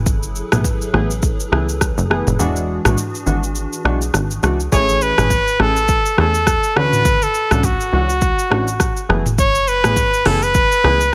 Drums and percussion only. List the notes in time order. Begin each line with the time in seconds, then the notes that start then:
0.06 kick, shaker
0.23 shaker
0.35 shaker
0.52 cross-stick, mid tom, shaker
0.64 kick, shaker
0.82 shaker
0.94 cross-stick
1.11 shaker
1.22 kick, shaker
1.40 shaker
1.53 cross-stick
1.69 shaker
1.81 kick, cross-stick, shaker
1.98 shaker
2.11 cross-stick
2.27 mid tom, shaker
2.40 shaker
2.56 shaker
2.85 cross-stick, mid tom, shaker
2.98 shaker
3.15 shaker
3.27 shaker
3.43 shaker
3.55 shaker
3.73 shaker
3.85 cross-stick
4.02 shaker
4.14 cross-stick, shaker
4.31 shaker
4.43 cross-stick, shaker
4.60 shaker
4.72 kick, shaker
4.89 shaker
5.01 shaker
5.18 cross-stick, mid tom, shaker
5.30 kick, shaker
5.47 shaker
5.60 cross-stick
5.76 shaker
5.88 kick, shaker
6.06 shaker
6.18 cross-stick
6.34 shaker
6.47 kick, cross-stick, shaker
6.63 shaker
6.77 cross-stick
6.93 mid tom, shaker
7.05 kick, shaker
7.22 shaker
7.34 shaker
7.51 cross-stick, mid tom, shaker
7.63 kick, shaker
7.80 shaker
8.09 shaker
8.21 kick, shaker
8.39 shaker
8.52 cross-stick
8.68 shaker
8.80 kick, cross-stick, shaker
8.97 shaker
9.10 cross-stick
9.26 mid tom, shaker
9.38 kick, shaker
9.55 shaker
9.67 shaker
9.84 cross-stick, mid tom, shaker
9.96 kick, shaker
10.14 shaker
10.25 cross-stick, open hi-hat
10.42 shaker
10.54 kick, shaker
10.72 shaker
10.84 cross-stick
11.01 shaker